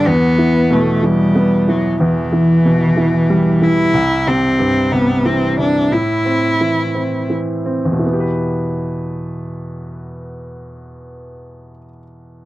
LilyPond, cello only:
\new Staff \with { instrumentName = "Cello" } { \time 6/8 \key e \minor \tempo 4. = 59 b4 a8 g4 fis8 | e2~ e8 e'8~ | e'8 c'4 b8 c'8 d'8 | e'2 r4 |
r2. | r2. | }